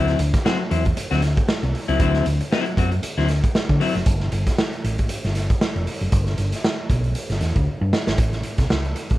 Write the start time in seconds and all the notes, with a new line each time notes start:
Already playing: D2 F#3 C4 E4
0.07 snare, closed hi-hat
0.19 D2, closed hi-hat
0.34 muted clean electric guitar stroke, kick, snare, closed hi-hat
0.45 F#3 C4 F#4, snare
0.59 muted clean electric guitar stroke
0.70 E2 F#3 C4 E4, closed hi-hat
0.85 muted clean electric guitar stroke, kick, closed hi-hat
0.97 muted clean electric guitar stroke, muted fingered electric bass stroke, closed hi-hat
1.11 D2 F#3 C4 F#4, snare, closed hi-hat
1.22 muted clean electric guitar stroke, snare, closed hi-hat
1.37 muted clean electric guitar stroke, kick, closed hi-hat
1.48 muted clean electric guitar stroke, muted fingered electric bass stroke, snare
1.63 C2, muted clean electric guitar stroke, closed hi-hat
1.75 open hi-hat
1.88 C#2 F#3 C4 E4, closed hi-hat
2.00 D2 F#3 C4 E4, kick, closed hi-hat
2.14 snare, closed hi-hat
2.26 D2, closed hi-hat
2.41 muted clean electric guitar stroke, closed hi-hat
2.52 F#3 C4 E4, snare
2.66 muted clean electric guitar stroke, closed hi-hat
2.77 F#2 F#3 C4 F#4, kick, closed hi-hat
2.92 muted clean electric guitar stroke, closed hi-hat
3.03 muted fingered electric bass stroke, muted clean electric guitar stroke, closed hi-hat
3.18 D2 F#3 C4 E4, snare
3.28 muted clean electric guitar stroke, snare, closed hi-hat
3.44 muted clean electric guitar stroke, kick, closed hi-hat
3.55 snare
3.69 D3, muted clean electric guitar stroke, kick, closed hi-hat
3.80 F#3 C4 E4, open hi-hat
3.95 F#1, muted clean electric guitar stroke, snare, closed hi-hat
4.06 G1, kick, closed hi-hat
4.20 snare
4.32 G1, closed hi-hat
4.47 kick, snare, closed hi-hat
4.58 snare
4.73 closed hi-hat
4.84 A1, closed hi-hat
4.98 kick, closed hi-hat
5.09 muted fingered electric bass stroke, closed hi-hat
5.24 G1, snare, closed hi-hat
5.35 snare, closed hi-hat
5.50 kick, closed hi-hat
5.61 muted fingered electric bass stroke, snare
5.76 F1, closed hi-hat
5.87 open hi-hat
6.01 F#1, closed hi-hat
6.12 G1, kick, closed hi-hat
6.26 snare, closed hi-hat
6.38 G1, closed hi-hat
6.52 snare, closed hi-hat
6.64 snare
6.90 B1, kick, closed hi-hat
7.04 closed hi-hat
7.15 closed hi-hat
7.30 G1, snare, closed hi-hat
7.41 E2, snare, closed hi-hat
7.56 D2, kick, closed hi-hat
7.81 G2
7.93 snare
8.07 G#1, snare
8.18 A1, kick, closed hi-hat
8.32 snare, closed hi-hat
8.43 closed hi-hat
8.58 C2, kick, snare, closed hi-hat
8.70 C#2, snare
8.84 closed hi-hat
8.96 closed hi-hat
9.10 A1, kick, closed hi-hat